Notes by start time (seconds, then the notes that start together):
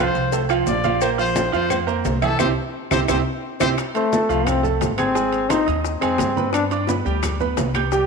Already playing: F3 F4 F5
0.00 C5
0.15 C2, cowbell, high conga, maracas
0.32 A3 A4 C5, cowbell, high conga, low agogo, maracas
0.49 F3 F4 F5, high conga, low agogo, claves, maracas
0.67 A#1 D5, cowbell, high conga, low timbale, maracas
0.84 F3 F4 F5, cowbell, high conga, maracas
1.01 A#3 A#4 C5, cowbell, high conga, low agogo, claves, maracas
1.18 F3 F4 C5 F5, high conga, maracas
1.36 cowbell, high conga, low timbale, low agogo, maracas
1.52 F2 F3 F4 C5 F5, high conga, maracas
1.70 C5, cowbell, high conga, low conga, low agogo, claves, maracas
1.87 A#3 A#4 C5, high conga, low agogo, maracas
2.05 C2, cowbell, high conga, low timbale, maracas
2.22 E3 E4 A4 E5, cowbell, high conga, low agogo, claves, maracas
2.39 C2 C4 E4 G4 C5, cowbell, high conga, high timbale, claves, maracas
2.91 C2 C4 E4 G4 C5, cowbell, high conga, high timbale, claves, maracas
3.08 C2 C4 E4 G4 C5, cowbell, high conga, high timbale, claves, maracas
3.60 C2 C4 E4 G4 C5, cowbell, high conga, high timbale, claves, maracas
3.78 high bongo, high timbale, claves, maracas
3.95 A3 C4 C5 C6, high bongo, high conga, high timbale, maracas
4.12 A3 A4 A5, high bongo, high conga, low timbale, maracas
4.29 C2 F3 F4 F5, high conga, maracas
4.47 C4, high bongo, high conga, low conga, high timbale, claves, maracas
4.63 A3 A4 A5, high bongo, high conga, low conga, maracas
4.81 G#1, high bongo, low bongo, high conga, high timbale, low timbale, maracas
4.98 C4 G#4 G#5 G#6, high bongo, high conga, high timbale, claves, maracas
5.14 G#3 G#4 G#5, high bongo, high conga, maracas
5.33 high bongo, high conga, high timbale, maracas
5.49 C4 D#4 C5 C6, high bongo, high conga, high timbale, low timbale, claves, maracas
5.66 D#2 D#4 D#5 D#6, high bongo, high conga, high timbale, maracas
5.84 high bongo, high conga, maracas
6.01 F2 G#3 C4 G#4 G#5, high bongo, high conga, high timbale, claves, maracas
6.18 G2, high bongo, low bongo, high conga, high timbale, low timbale, maracas
6.36 B3 B4 B5, high conga, maracas
6.53 D4, high bongo, high conga, high timbale, claves, maracas
6.70 D4 D5 D6, high bongo, high conga, high timbale, maracas
6.87 B3 B4 B5, high bongo, high conga, low timbale, maracas
7.05 D2 G3 G4 G5, high conga, maracas
7.23 high bongo, high conga, low conga, high timbale, claves, maracas
7.40 B3 B4 B5, high bongo, high conga, low conga, maracas
7.57 C2, high bongo, low bongo, high conga, high timbale, low timbale, maracas
7.74 G4 G5 G6, high bongo, high conga, high timbale, claves, maracas
7.91 G3 G4 G5, high bongo, high conga, maracas